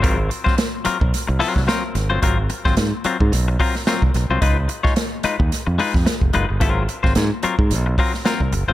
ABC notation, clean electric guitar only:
X:1
M:4/4
L:1/16
Q:"Swing 16ths" 1/4=110
K:Abmix
V:1 name="Clean electric guitar"
[G,CFB] z2 [G,CFc] z2 [G,CFB] z3 [G,CFB] z [G,CFB] z2 [G,CFc] | [G,CFB] z2 [G,CFc] z2 [G,CFB] z3 [G,CFB] z [G,CFB] z2 [G,CFc] | [A,EF_c] z2 [A,EFd] z2 [A,EFc] z3 [A,EFc] z3 [A,EFc] z | [G,CFB] z2 [G,CFc] z2 [G,CFB] z3 [G,CFB] z [G,CFB] z2 [G,CFc] |]